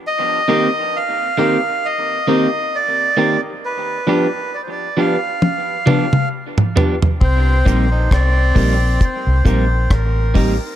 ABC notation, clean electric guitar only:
X:1
M:4/4
L:1/8
Q:"Swing 16ths" 1/4=67
K:Cdor
V:1 name="Clean electric guitar"
z [E,B,CG] z [E,B,CG] z [E,B,CG] z [E,B,CG] | z [F,=B,DG] z [F,B,DG] z [F,B,DG] z [F,B,DG] | z [G,B,EG] z [G,B,EG] z [G,B,EG] z [G,B,EG] |]